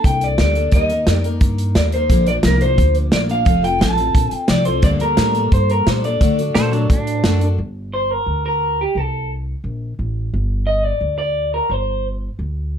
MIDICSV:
0, 0, Header, 1, 7, 480
1, 0, Start_track
1, 0, Key_signature, -2, "minor"
1, 0, Tempo, 342857
1, 1018, Time_signature, 4, 2, 24, 8
1, 17900, End_track
2, 0, Start_track
2, 0, Title_t, "Clean electric guitar"
2, 0, Program_c, 0, 27
2, 75, Note_on_c, 0, 79, 96
2, 314, Note_off_c, 0, 79, 0
2, 334, Note_on_c, 0, 74, 84
2, 541, Note_off_c, 0, 74, 0
2, 564, Note_on_c, 0, 74, 78
2, 1021, Note_off_c, 0, 74, 0
2, 1027, Note_on_c, 0, 75, 80
2, 1517, Note_off_c, 0, 75, 0
2, 1517, Note_on_c, 0, 74, 80
2, 1692, Note_off_c, 0, 74, 0
2, 2467, Note_on_c, 0, 74, 86
2, 2537, Note_off_c, 0, 74, 0
2, 2712, Note_on_c, 0, 72, 74
2, 3183, Note_off_c, 0, 72, 0
2, 3188, Note_on_c, 0, 74, 90
2, 3258, Note_off_c, 0, 74, 0
2, 3434, Note_on_c, 0, 70, 77
2, 3649, Note_off_c, 0, 70, 0
2, 3666, Note_on_c, 0, 72, 93
2, 4108, Note_off_c, 0, 72, 0
2, 4385, Note_on_c, 0, 74, 87
2, 4455, Note_off_c, 0, 74, 0
2, 4634, Note_on_c, 0, 77, 87
2, 5072, Note_off_c, 0, 77, 0
2, 5101, Note_on_c, 0, 79, 100
2, 5332, Note_off_c, 0, 79, 0
2, 5338, Note_on_c, 0, 81, 99
2, 6080, Note_off_c, 0, 81, 0
2, 6080, Note_on_c, 0, 79, 99
2, 6301, Note_off_c, 0, 79, 0
2, 6307, Note_on_c, 0, 74, 94
2, 6513, Note_off_c, 0, 74, 0
2, 6513, Note_on_c, 0, 72, 82
2, 6768, Note_off_c, 0, 72, 0
2, 6774, Note_on_c, 0, 74, 96
2, 6844, Note_off_c, 0, 74, 0
2, 7017, Note_on_c, 0, 70, 89
2, 7684, Note_off_c, 0, 70, 0
2, 7748, Note_on_c, 0, 72, 94
2, 7987, Note_off_c, 0, 72, 0
2, 7994, Note_on_c, 0, 70, 81
2, 8229, Note_off_c, 0, 70, 0
2, 8229, Note_on_c, 0, 72, 84
2, 8462, Note_off_c, 0, 72, 0
2, 8468, Note_on_c, 0, 74, 71
2, 10082, Note_off_c, 0, 74, 0
2, 11109, Note_on_c, 0, 72, 83
2, 11352, Note_off_c, 0, 72, 0
2, 11352, Note_on_c, 0, 70, 88
2, 11823, Note_off_c, 0, 70, 0
2, 11840, Note_on_c, 0, 70, 82
2, 12320, Note_off_c, 0, 70, 0
2, 12335, Note_on_c, 0, 67, 62
2, 12565, Note_off_c, 0, 67, 0
2, 12565, Note_on_c, 0, 69, 70
2, 13029, Note_off_c, 0, 69, 0
2, 14933, Note_on_c, 0, 75, 91
2, 15172, Note_off_c, 0, 75, 0
2, 15172, Note_on_c, 0, 74, 94
2, 15641, Note_off_c, 0, 74, 0
2, 15658, Note_on_c, 0, 74, 90
2, 16150, Note_off_c, 0, 74, 0
2, 16155, Note_on_c, 0, 70, 64
2, 16398, Note_off_c, 0, 70, 0
2, 16398, Note_on_c, 0, 72, 74
2, 16866, Note_off_c, 0, 72, 0
2, 17900, End_track
3, 0, Start_track
3, 0, Title_t, "Pedal steel guitar"
3, 0, Program_c, 1, 26
3, 9165, Note_on_c, 1, 69, 82
3, 9174, Note_on_c, 1, 72, 96
3, 9399, Note_on_c, 1, 54, 73
3, 9405, Note_off_c, 1, 72, 0
3, 9408, Note_off_c, 1, 69, 0
3, 9416, Note_on_c, 1, 62, 82
3, 9627, Note_off_c, 1, 54, 0
3, 9639, Note_off_c, 1, 62, 0
3, 9656, Note_on_c, 1, 62, 91
3, 10468, Note_off_c, 1, 62, 0
3, 17900, End_track
4, 0, Start_track
4, 0, Title_t, "Steel-string acoustic guitar"
4, 0, Program_c, 2, 25
4, 0, Note_on_c, 2, 55, 46
4, 0, Note_on_c, 2, 58, 47
4, 0, Note_on_c, 2, 62, 53
4, 0, Note_on_c, 2, 69, 55
4, 533, Note_off_c, 2, 55, 0
4, 537, Note_off_c, 2, 69, 0
4, 548, Note_off_c, 2, 62, 0
4, 549, Note_on_c, 2, 55, 60
4, 557, Note_off_c, 2, 58, 0
4, 563, Note_on_c, 2, 58, 70
4, 584, Note_on_c, 2, 62, 70
4, 592, Note_on_c, 2, 69, 70
4, 765, Note_off_c, 2, 69, 0
4, 782, Note_on_c, 2, 69, 51
4, 784, Note_off_c, 2, 55, 0
4, 789, Note_off_c, 2, 62, 0
4, 790, Note_off_c, 2, 58, 0
4, 806, Note_on_c, 2, 62, 44
4, 816, Note_on_c, 2, 58, 46
4, 828, Note_on_c, 2, 55, 41
4, 1019, Note_off_c, 2, 55, 0
4, 1020, Note_off_c, 2, 69, 0
4, 1029, Note_off_c, 2, 58, 0
4, 1029, Note_on_c, 2, 51, 73
4, 1032, Note_off_c, 2, 62, 0
4, 1036, Note_on_c, 2, 55, 76
4, 1046, Note_on_c, 2, 58, 66
4, 1056, Note_on_c, 2, 63, 76
4, 1064, Note_on_c, 2, 70, 74
4, 1247, Note_off_c, 2, 70, 0
4, 1264, Note_off_c, 2, 51, 0
4, 1264, Note_on_c, 2, 70, 48
4, 1267, Note_off_c, 2, 55, 0
4, 1269, Note_off_c, 2, 63, 0
4, 1272, Note_off_c, 2, 58, 0
4, 1285, Note_on_c, 2, 63, 49
4, 1309, Note_on_c, 2, 58, 43
4, 1501, Note_off_c, 2, 70, 0
4, 1505, Note_on_c, 2, 55, 63
4, 1508, Note_off_c, 2, 58, 0
4, 1512, Note_off_c, 2, 63, 0
4, 1524, Note_on_c, 2, 58, 59
4, 1533, Note_on_c, 2, 63, 68
4, 1552, Note_on_c, 2, 70, 68
4, 1735, Note_off_c, 2, 70, 0
4, 1742, Note_off_c, 2, 55, 0
4, 1751, Note_off_c, 2, 58, 0
4, 1752, Note_on_c, 2, 70, 58
4, 1755, Note_off_c, 2, 63, 0
4, 1778, Note_on_c, 2, 63, 60
4, 1791, Note_on_c, 2, 58, 48
4, 2458, Note_on_c, 2, 55, 59
4, 2461, Note_off_c, 2, 58, 0
4, 2464, Note_off_c, 2, 70, 0
4, 2478, Note_off_c, 2, 63, 0
4, 2478, Note_on_c, 2, 58, 68
4, 2492, Note_on_c, 2, 63, 67
4, 2502, Note_on_c, 2, 70, 67
4, 2688, Note_off_c, 2, 70, 0
4, 2698, Note_off_c, 2, 55, 0
4, 2705, Note_on_c, 2, 70, 52
4, 2708, Note_off_c, 2, 58, 0
4, 2715, Note_off_c, 2, 63, 0
4, 2733, Note_on_c, 2, 63, 46
4, 2751, Note_on_c, 2, 58, 42
4, 2938, Note_on_c, 2, 46, 66
4, 2941, Note_off_c, 2, 70, 0
4, 2942, Note_on_c, 2, 50, 68
4, 2944, Note_off_c, 2, 58, 0
4, 2950, Note_on_c, 2, 53, 72
4, 2955, Note_off_c, 2, 63, 0
4, 2960, Note_on_c, 2, 58, 76
4, 2965, Note_on_c, 2, 62, 71
4, 2970, Note_on_c, 2, 70, 69
4, 3150, Note_off_c, 2, 70, 0
4, 3167, Note_on_c, 2, 70, 48
4, 3175, Note_off_c, 2, 62, 0
4, 3178, Note_off_c, 2, 46, 0
4, 3179, Note_off_c, 2, 50, 0
4, 3180, Note_off_c, 2, 58, 0
4, 3183, Note_off_c, 2, 53, 0
4, 3192, Note_on_c, 2, 62, 49
4, 3197, Note_on_c, 2, 58, 45
4, 3216, Note_on_c, 2, 53, 39
4, 3388, Note_off_c, 2, 53, 0
4, 3405, Note_on_c, 2, 53, 55
4, 3412, Note_off_c, 2, 70, 0
4, 3416, Note_off_c, 2, 58, 0
4, 3425, Note_off_c, 2, 62, 0
4, 3433, Note_on_c, 2, 58, 65
4, 3445, Note_on_c, 2, 62, 65
4, 3458, Note_on_c, 2, 70, 69
4, 3633, Note_off_c, 2, 70, 0
4, 3650, Note_on_c, 2, 70, 52
4, 3651, Note_off_c, 2, 53, 0
4, 3655, Note_off_c, 2, 62, 0
4, 3662, Note_off_c, 2, 58, 0
4, 3672, Note_on_c, 2, 62, 55
4, 3679, Note_on_c, 2, 58, 45
4, 3686, Note_on_c, 2, 53, 46
4, 4350, Note_off_c, 2, 53, 0
4, 4367, Note_on_c, 2, 53, 58
4, 4370, Note_off_c, 2, 58, 0
4, 4373, Note_off_c, 2, 70, 0
4, 4384, Note_off_c, 2, 62, 0
4, 4387, Note_on_c, 2, 58, 66
4, 4398, Note_on_c, 2, 62, 70
4, 4409, Note_on_c, 2, 70, 64
4, 4581, Note_off_c, 2, 70, 0
4, 4598, Note_off_c, 2, 62, 0
4, 4598, Note_on_c, 2, 70, 47
4, 4610, Note_off_c, 2, 58, 0
4, 4611, Note_off_c, 2, 53, 0
4, 4615, Note_on_c, 2, 62, 44
4, 4626, Note_on_c, 2, 58, 47
4, 4641, Note_on_c, 2, 53, 37
4, 4814, Note_off_c, 2, 53, 0
4, 4830, Note_on_c, 2, 53, 70
4, 4831, Note_off_c, 2, 58, 0
4, 4836, Note_on_c, 2, 60, 72
4, 4844, Note_off_c, 2, 62, 0
4, 4847, Note_off_c, 2, 70, 0
4, 4850, Note_on_c, 2, 65, 83
4, 4862, Note_on_c, 2, 69, 71
4, 5059, Note_off_c, 2, 69, 0
4, 5076, Note_on_c, 2, 69, 54
4, 5083, Note_off_c, 2, 53, 0
4, 5083, Note_off_c, 2, 65, 0
4, 5086, Note_off_c, 2, 60, 0
4, 5100, Note_on_c, 2, 65, 49
4, 5119, Note_on_c, 2, 60, 45
4, 5300, Note_on_c, 2, 53, 59
4, 5305, Note_off_c, 2, 60, 0
4, 5316, Note_off_c, 2, 65, 0
4, 5321, Note_on_c, 2, 60, 57
4, 5325, Note_off_c, 2, 69, 0
4, 5332, Note_on_c, 2, 65, 72
4, 5351, Note_on_c, 2, 69, 71
4, 5541, Note_off_c, 2, 69, 0
4, 5557, Note_off_c, 2, 53, 0
4, 5557, Note_on_c, 2, 69, 54
4, 5568, Note_off_c, 2, 60, 0
4, 5568, Note_off_c, 2, 65, 0
4, 5585, Note_on_c, 2, 65, 49
4, 5593, Note_on_c, 2, 60, 43
4, 6268, Note_off_c, 2, 60, 0
4, 6268, Note_on_c, 2, 53, 69
4, 6284, Note_on_c, 2, 60, 67
4, 6285, Note_off_c, 2, 65, 0
4, 6302, Note_on_c, 2, 65, 66
4, 6310, Note_off_c, 2, 69, 0
4, 6316, Note_on_c, 2, 69, 68
4, 6503, Note_off_c, 2, 69, 0
4, 6519, Note_off_c, 2, 65, 0
4, 6519, Note_on_c, 2, 69, 53
4, 6521, Note_off_c, 2, 53, 0
4, 6529, Note_off_c, 2, 60, 0
4, 6536, Note_on_c, 2, 65, 50
4, 6557, Note_on_c, 2, 60, 40
4, 6749, Note_on_c, 2, 43, 71
4, 6762, Note_on_c, 2, 50, 75
4, 6766, Note_off_c, 2, 69, 0
4, 6768, Note_on_c, 2, 55, 76
4, 6769, Note_off_c, 2, 60, 0
4, 6774, Note_off_c, 2, 65, 0
4, 6774, Note_on_c, 2, 58, 78
4, 6782, Note_on_c, 2, 62, 78
4, 6789, Note_on_c, 2, 69, 89
4, 6970, Note_off_c, 2, 69, 0
4, 6987, Note_on_c, 2, 69, 51
4, 6994, Note_off_c, 2, 62, 0
4, 7001, Note_off_c, 2, 43, 0
4, 7003, Note_off_c, 2, 58, 0
4, 7008, Note_off_c, 2, 50, 0
4, 7011, Note_off_c, 2, 55, 0
4, 7011, Note_on_c, 2, 62, 51
4, 7020, Note_on_c, 2, 58, 43
4, 7036, Note_on_c, 2, 55, 46
4, 7217, Note_off_c, 2, 55, 0
4, 7234, Note_on_c, 2, 55, 61
4, 7236, Note_off_c, 2, 58, 0
4, 7240, Note_off_c, 2, 69, 0
4, 7247, Note_off_c, 2, 62, 0
4, 7253, Note_on_c, 2, 58, 57
4, 7264, Note_on_c, 2, 62, 66
4, 7278, Note_on_c, 2, 69, 65
4, 7447, Note_off_c, 2, 69, 0
4, 7463, Note_off_c, 2, 62, 0
4, 7464, Note_on_c, 2, 69, 59
4, 7479, Note_on_c, 2, 62, 47
4, 7483, Note_off_c, 2, 55, 0
4, 7485, Note_off_c, 2, 58, 0
4, 7502, Note_on_c, 2, 58, 50
4, 7511, Note_on_c, 2, 55, 42
4, 8191, Note_off_c, 2, 55, 0
4, 8197, Note_off_c, 2, 69, 0
4, 8208, Note_on_c, 2, 55, 62
4, 8216, Note_off_c, 2, 58, 0
4, 8230, Note_off_c, 2, 62, 0
4, 8231, Note_on_c, 2, 58, 65
4, 8236, Note_on_c, 2, 62, 76
4, 8256, Note_on_c, 2, 69, 72
4, 8448, Note_off_c, 2, 69, 0
4, 8450, Note_off_c, 2, 55, 0
4, 8461, Note_off_c, 2, 58, 0
4, 8463, Note_off_c, 2, 62, 0
4, 8465, Note_on_c, 2, 69, 52
4, 8478, Note_on_c, 2, 62, 51
4, 8497, Note_on_c, 2, 58, 45
4, 8506, Note_on_c, 2, 55, 44
4, 8691, Note_off_c, 2, 62, 0
4, 8691, Note_on_c, 2, 50, 66
4, 8694, Note_off_c, 2, 55, 0
4, 8698, Note_off_c, 2, 69, 0
4, 8699, Note_on_c, 2, 57, 75
4, 8702, Note_off_c, 2, 58, 0
4, 8708, Note_on_c, 2, 62, 72
4, 8721, Note_on_c, 2, 66, 74
4, 8723, Note_on_c, 2, 69, 74
4, 8918, Note_off_c, 2, 69, 0
4, 8930, Note_off_c, 2, 50, 0
4, 8935, Note_off_c, 2, 57, 0
4, 8935, Note_on_c, 2, 69, 51
4, 8938, Note_off_c, 2, 66, 0
4, 8939, Note_off_c, 2, 62, 0
4, 8955, Note_on_c, 2, 66, 46
4, 8979, Note_on_c, 2, 62, 44
4, 9168, Note_off_c, 2, 62, 0
4, 9171, Note_on_c, 2, 57, 69
4, 9173, Note_off_c, 2, 69, 0
4, 9183, Note_off_c, 2, 66, 0
4, 9185, Note_on_c, 2, 62, 74
4, 9208, Note_on_c, 2, 66, 72
4, 9219, Note_on_c, 2, 69, 74
4, 9403, Note_off_c, 2, 69, 0
4, 9411, Note_off_c, 2, 57, 0
4, 9418, Note_off_c, 2, 62, 0
4, 9419, Note_on_c, 2, 69, 60
4, 9426, Note_off_c, 2, 66, 0
4, 9443, Note_on_c, 2, 66, 58
4, 9467, Note_on_c, 2, 62, 49
4, 10134, Note_off_c, 2, 69, 0
4, 10145, Note_off_c, 2, 62, 0
4, 10146, Note_off_c, 2, 66, 0
4, 10150, Note_on_c, 2, 57, 71
4, 10162, Note_on_c, 2, 62, 74
4, 10174, Note_on_c, 2, 66, 68
4, 10191, Note_on_c, 2, 69, 82
4, 10355, Note_off_c, 2, 69, 0
4, 10372, Note_on_c, 2, 69, 57
4, 10379, Note_off_c, 2, 66, 0
4, 10380, Note_off_c, 2, 57, 0
4, 10386, Note_off_c, 2, 62, 0
4, 10396, Note_on_c, 2, 66, 57
4, 10415, Note_on_c, 2, 62, 44
4, 10611, Note_off_c, 2, 69, 0
4, 10623, Note_off_c, 2, 66, 0
4, 10632, Note_off_c, 2, 62, 0
4, 17900, End_track
5, 0, Start_track
5, 0, Title_t, "Upright bass"
5, 0, Program_c, 3, 32
5, 63, Note_on_c, 3, 36, 86
5, 526, Note_off_c, 3, 36, 0
5, 545, Note_on_c, 3, 38, 86
5, 1007, Note_off_c, 3, 38, 0
5, 1016, Note_on_c, 3, 39, 79
5, 1482, Note_off_c, 3, 39, 0
5, 1495, Note_on_c, 3, 41, 91
5, 1962, Note_off_c, 3, 41, 0
5, 1978, Note_on_c, 3, 43, 86
5, 2443, Note_off_c, 3, 43, 0
5, 2456, Note_on_c, 3, 39, 84
5, 2922, Note_off_c, 3, 39, 0
5, 2940, Note_on_c, 3, 34, 81
5, 3404, Note_off_c, 3, 34, 0
5, 3416, Note_on_c, 3, 36, 86
5, 3882, Note_off_c, 3, 36, 0
5, 3897, Note_on_c, 3, 38, 88
5, 4362, Note_off_c, 3, 38, 0
5, 4371, Note_on_c, 3, 34, 90
5, 4839, Note_off_c, 3, 34, 0
5, 4854, Note_on_c, 3, 29, 80
5, 5320, Note_off_c, 3, 29, 0
5, 5338, Note_on_c, 3, 33, 99
5, 5794, Note_off_c, 3, 33, 0
5, 5803, Note_on_c, 3, 34, 89
5, 6031, Note_off_c, 3, 34, 0
5, 6284, Note_on_c, 3, 36, 84
5, 6745, Note_off_c, 3, 36, 0
5, 6753, Note_on_c, 3, 38, 80
5, 7228, Note_off_c, 3, 38, 0
5, 7249, Note_on_c, 3, 45, 95
5, 7716, Note_off_c, 3, 45, 0
5, 7725, Note_on_c, 3, 43, 93
5, 8193, Note_off_c, 3, 43, 0
5, 8214, Note_on_c, 3, 46, 91
5, 8678, Note_off_c, 3, 46, 0
5, 8697, Note_on_c, 3, 50, 83
5, 9154, Note_off_c, 3, 50, 0
5, 9163, Note_on_c, 3, 46, 99
5, 9632, Note_off_c, 3, 46, 0
5, 9661, Note_on_c, 3, 45, 85
5, 10121, Note_off_c, 3, 45, 0
5, 10132, Note_on_c, 3, 42, 88
5, 10597, Note_off_c, 3, 42, 0
5, 10617, Note_on_c, 3, 31, 75
5, 11421, Note_off_c, 3, 31, 0
5, 11569, Note_on_c, 3, 38, 69
5, 12377, Note_off_c, 3, 38, 0
5, 12531, Note_on_c, 3, 36, 70
5, 13339, Note_off_c, 3, 36, 0
5, 13493, Note_on_c, 3, 34, 74
5, 13901, Note_off_c, 3, 34, 0
5, 13983, Note_on_c, 3, 33, 71
5, 14388, Note_off_c, 3, 33, 0
5, 14469, Note_on_c, 3, 31, 82
5, 15270, Note_off_c, 3, 31, 0
5, 15410, Note_on_c, 3, 38, 74
5, 16219, Note_off_c, 3, 38, 0
5, 16373, Note_on_c, 3, 31, 74
5, 17180, Note_off_c, 3, 31, 0
5, 17343, Note_on_c, 3, 38, 69
5, 17900, Note_off_c, 3, 38, 0
5, 17900, End_track
6, 0, Start_track
6, 0, Title_t, "Muted upright bass strokes"
6, 6047, Note_on_c, 9, 29, 42
6, 6187, Note_off_c, 9, 29, 0
6, 17900, End_track
7, 0, Start_track
7, 0, Title_t, "Drums"
7, 60, Note_on_c, 9, 36, 102
7, 66, Note_on_c, 9, 42, 76
7, 200, Note_off_c, 9, 36, 0
7, 206, Note_off_c, 9, 42, 0
7, 296, Note_on_c, 9, 42, 61
7, 436, Note_off_c, 9, 42, 0
7, 533, Note_on_c, 9, 38, 105
7, 533, Note_on_c, 9, 42, 78
7, 673, Note_off_c, 9, 38, 0
7, 673, Note_off_c, 9, 42, 0
7, 774, Note_on_c, 9, 42, 55
7, 914, Note_off_c, 9, 42, 0
7, 1002, Note_on_c, 9, 42, 81
7, 1012, Note_on_c, 9, 36, 108
7, 1142, Note_off_c, 9, 42, 0
7, 1152, Note_off_c, 9, 36, 0
7, 1254, Note_on_c, 9, 42, 55
7, 1394, Note_off_c, 9, 42, 0
7, 1493, Note_on_c, 9, 38, 103
7, 1493, Note_on_c, 9, 42, 86
7, 1633, Note_off_c, 9, 38, 0
7, 1633, Note_off_c, 9, 42, 0
7, 1739, Note_on_c, 9, 42, 53
7, 1879, Note_off_c, 9, 42, 0
7, 1971, Note_on_c, 9, 42, 81
7, 1974, Note_on_c, 9, 36, 103
7, 2111, Note_off_c, 9, 42, 0
7, 2114, Note_off_c, 9, 36, 0
7, 2217, Note_on_c, 9, 42, 67
7, 2357, Note_off_c, 9, 42, 0
7, 2453, Note_on_c, 9, 38, 115
7, 2453, Note_on_c, 9, 42, 87
7, 2593, Note_off_c, 9, 38, 0
7, 2593, Note_off_c, 9, 42, 0
7, 2693, Note_on_c, 9, 42, 59
7, 2833, Note_off_c, 9, 42, 0
7, 2935, Note_on_c, 9, 36, 104
7, 2939, Note_on_c, 9, 42, 90
7, 3075, Note_off_c, 9, 36, 0
7, 3079, Note_off_c, 9, 42, 0
7, 3171, Note_on_c, 9, 42, 63
7, 3311, Note_off_c, 9, 42, 0
7, 3403, Note_on_c, 9, 38, 109
7, 3403, Note_on_c, 9, 42, 91
7, 3543, Note_off_c, 9, 38, 0
7, 3543, Note_off_c, 9, 42, 0
7, 3651, Note_on_c, 9, 42, 53
7, 3791, Note_off_c, 9, 42, 0
7, 3893, Note_on_c, 9, 36, 107
7, 3898, Note_on_c, 9, 42, 80
7, 4033, Note_off_c, 9, 36, 0
7, 4038, Note_off_c, 9, 42, 0
7, 4126, Note_on_c, 9, 42, 60
7, 4266, Note_off_c, 9, 42, 0
7, 4364, Note_on_c, 9, 38, 112
7, 4364, Note_on_c, 9, 42, 86
7, 4504, Note_off_c, 9, 38, 0
7, 4504, Note_off_c, 9, 42, 0
7, 4612, Note_on_c, 9, 42, 55
7, 4752, Note_off_c, 9, 42, 0
7, 4847, Note_on_c, 9, 36, 113
7, 4848, Note_on_c, 9, 42, 75
7, 4987, Note_off_c, 9, 36, 0
7, 4988, Note_off_c, 9, 42, 0
7, 5099, Note_on_c, 9, 42, 56
7, 5239, Note_off_c, 9, 42, 0
7, 5336, Note_on_c, 9, 38, 107
7, 5336, Note_on_c, 9, 42, 82
7, 5476, Note_off_c, 9, 38, 0
7, 5476, Note_off_c, 9, 42, 0
7, 5567, Note_on_c, 9, 42, 52
7, 5707, Note_off_c, 9, 42, 0
7, 5805, Note_on_c, 9, 36, 112
7, 5810, Note_on_c, 9, 42, 83
7, 5945, Note_off_c, 9, 36, 0
7, 5950, Note_off_c, 9, 42, 0
7, 6038, Note_on_c, 9, 42, 66
7, 6178, Note_off_c, 9, 42, 0
7, 6272, Note_on_c, 9, 38, 115
7, 6272, Note_on_c, 9, 42, 91
7, 6412, Note_off_c, 9, 38, 0
7, 6412, Note_off_c, 9, 42, 0
7, 6512, Note_on_c, 9, 42, 60
7, 6652, Note_off_c, 9, 42, 0
7, 6754, Note_on_c, 9, 42, 88
7, 6760, Note_on_c, 9, 36, 119
7, 6894, Note_off_c, 9, 42, 0
7, 6900, Note_off_c, 9, 36, 0
7, 6999, Note_on_c, 9, 42, 68
7, 7139, Note_off_c, 9, 42, 0
7, 7240, Note_on_c, 9, 38, 112
7, 7240, Note_on_c, 9, 42, 89
7, 7380, Note_off_c, 9, 38, 0
7, 7380, Note_off_c, 9, 42, 0
7, 7486, Note_on_c, 9, 42, 57
7, 7626, Note_off_c, 9, 42, 0
7, 7727, Note_on_c, 9, 36, 107
7, 7727, Note_on_c, 9, 42, 87
7, 7867, Note_off_c, 9, 36, 0
7, 7867, Note_off_c, 9, 42, 0
7, 7974, Note_on_c, 9, 42, 60
7, 8114, Note_off_c, 9, 42, 0
7, 8214, Note_on_c, 9, 38, 114
7, 8214, Note_on_c, 9, 42, 83
7, 8354, Note_off_c, 9, 38, 0
7, 8354, Note_off_c, 9, 42, 0
7, 8457, Note_on_c, 9, 42, 55
7, 8597, Note_off_c, 9, 42, 0
7, 8692, Note_on_c, 9, 42, 81
7, 8693, Note_on_c, 9, 36, 107
7, 8832, Note_off_c, 9, 42, 0
7, 8833, Note_off_c, 9, 36, 0
7, 8942, Note_on_c, 9, 42, 60
7, 9082, Note_off_c, 9, 42, 0
7, 9174, Note_on_c, 9, 38, 110
7, 9174, Note_on_c, 9, 42, 86
7, 9314, Note_off_c, 9, 38, 0
7, 9314, Note_off_c, 9, 42, 0
7, 9422, Note_on_c, 9, 42, 53
7, 9562, Note_off_c, 9, 42, 0
7, 9657, Note_on_c, 9, 36, 105
7, 9661, Note_on_c, 9, 42, 80
7, 9797, Note_off_c, 9, 36, 0
7, 9801, Note_off_c, 9, 42, 0
7, 9901, Note_on_c, 9, 42, 65
7, 10041, Note_off_c, 9, 42, 0
7, 10133, Note_on_c, 9, 38, 111
7, 10133, Note_on_c, 9, 42, 84
7, 10273, Note_off_c, 9, 38, 0
7, 10273, Note_off_c, 9, 42, 0
7, 10377, Note_on_c, 9, 42, 57
7, 10517, Note_off_c, 9, 42, 0
7, 17900, End_track
0, 0, End_of_file